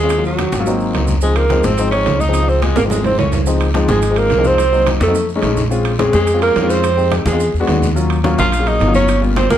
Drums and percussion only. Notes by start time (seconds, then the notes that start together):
0.09 high conga, high timbale, long guiro, maracas
0.25 high conga, maracas
0.38 high conga, high timbale, low timbale, short guiro, maracas
0.52 high conga, high timbale, short guiro, maracas
0.66 high conga, long guiro, maracas
0.80 high conga, maracas
0.94 high conga, high timbale, low timbale, short guiro, maracas
1.07 high conga, short guiro, maracas
1.21 high conga, long guiro, maracas
1.36 high conga, high timbale, maracas
1.50 high conga, high timbale, low timbale, short guiro, maracas
1.63 high conga, short guiro, maracas
1.78 high conga, high timbale, long guiro, maracas
1.92 high conga, high timbale, maracas
2.06 high conga, high timbale, low timbale, short guiro, maracas
2.20 high conga, short guiro, maracas
2.34 high timbale, long guiro, maracas
2.48 high conga, maracas
2.62 high conga, high timbale, low timbale, short guiro, maracas
2.76 high conga, high timbale, short guiro, maracas
2.90 high conga, low timbale, long guiro, maracas
3.04 high conga, low timbale, maracas
3.18 low conga, low timbale, short guiro, maracas
3.32 low conga, low timbale, short guiro, maracas
3.46 high conga, long guiro, maracas
3.60 high conga, high timbale, maracas
3.74 high conga, high timbale, low timbale, short guiro, maracas
3.88 high conga, short guiro, maracas
4.02 high conga, high timbale, long guiro, maracas
4.16 high conga, high timbale, maracas
4.30 high conga, high timbale, low timbale, short guiro, maracas
4.44 high conga, short guiro, maracas
4.58 high conga, high timbale, long guiro, maracas
4.73 high conga, maracas
4.87 high conga, high timbale, low timbale, short guiro, maracas
5.00 high conga, high timbale, short guiro, maracas
5.15 high conga, long guiro, maracas
5.29 high conga, maracas
5.42 high conga, high timbale, low timbale, short guiro, maracas
5.57 high conga, short guiro, maracas
5.71 high conga, long guiro, maracas
5.85 high conga, high timbale, maracas
5.99 high conga, high timbale, low timbale, short guiro, maracas
6.13 high conga, short guiro, maracas
6.27 high conga, high timbale, long guiro, maracas
6.41 high conga, high timbale, maracas
6.55 high conga, high timbale, low timbale, short guiro, maracas
6.70 short guiro, maracas
6.84 high conga, high timbale, long guiro, maracas
6.97 high conga, maracas
7.12 high conga, high timbale, low timbale, short guiro, maracas
7.26 high conga, high timbale, short guiro, maracas
7.40 high conga, long guiro, maracas
7.54 high conga, maracas
7.67 high conga, high timbale, low timbale, short guiro, maracas
7.82 high conga, short guiro, maracas
7.96 high conga, long guiro, maracas
8.10 high conga, high timbale, maracas
8.24 high conga, high timbale, low timbale, short guiro, maracas
8.38 high conga, short guiro, maracas
8.52 high conga, high timbale, long guiro, maracas
8.67 high conga, high timbale, maracas
8.80 high timbale, low timbale, short guiro, maracas
8.94 high conga, short guiro, maracas
9.08 high timbale, long guiro, maracas
9.23 high conga, maracas
9.36 high conga, high timbale, low timbale, short guiro, maracas
9.50 high conga, high timbale, short guiro, maracas